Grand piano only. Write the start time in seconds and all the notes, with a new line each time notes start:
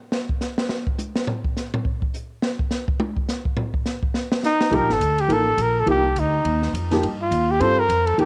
4.71 F3 A#3 D#4 G4
5.28 F3 A#3 D#4 A#4
5.86 F3 A#3 D#4 G4
6.92 F3 A#3 D#4 G4
7.60 G3 C4 F4 A4
8.18 F3 A#3 D#4 G4